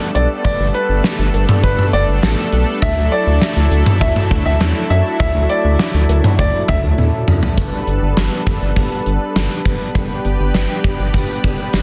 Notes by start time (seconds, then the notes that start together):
Already playing: G3 A3 B3 D4 A4
0.15 B1 D5, closed hi-hat
0.44 G1 D5, kick, closed hi-hat
0.60 G1
0.74 B4, closed hi-hat
0.89 G1
1.04 snare, closed hi-hat
1.19 G1
1.34 G1, closed hi-hat, cowbell
1.49 mid tom
1.63 G1 B4, kick, closed hi-hat
1.79 mid tom
1.93 G1 D5, closed hi-hat
2.08 G1
2.23 A1, snare, closed hi-hat
2.53 B1, closed hi-hat
2.82 D2 F#3 E4 E5, kick, closed hi-hat
2.97 D2
3.12 D5, closed hi-hat
3.27 D2
3.41 snare, closed hi-hat
3.57 D2
3.71 D2, closed hi-hat
3.86 mid tom
4.01 D2 E5, kick, closed hi-hat
4.16 mid tom
4.31 D2, kick, closed hi-hat
4.46 D2 E5
4.60 E2, snare, closed hi-hat
4.90 F#2 E5, closed hi-hat
5.20 D2 E5, kick, closed hi-hat
5.35 D2
5.49 D5, closed hi-hat
5.64 D2
5.79 snare, closed hi-hat
5.94 D2
6.09 D2, closed hi-hat, cowbell
6.24 mid tom
6.39 D2 D5, kick, closed hi-hat
6.68 D2 E5, kick, closed hi-hat, mid tom
6.83 D2
6.98 E2, high tom
7.28 F#2, mid tom
7.43 floor tom
7.58 G1 G3 B3 D4 A4 B4, kick, closed hi-hat
7.87 G1, closed hi-hat
8.02 G1
8.17 G1, snare, closed hi-hat
8.47 G1, kick, closed hi-hat
8.62 G1
8.76 G1, kick, closed hi-hat
9.06 G1, closed hi-hat
9.36 G1, snare, closed hi-hat
9.65 G1, kick, closed hi-hat
9.95 G1 G4, kick, closed hi-hat
10.25 G1, closed hi-hat
10.40 G1
10.54 G1, snare, closed hi-hat
10.84 G1, kick, closed hi-hat
10.99 G1
11.14 G1, kick, closed hi-hat
11.44 G1, kick, closed hi-hat
11.73 G1, snare, closed hi-hat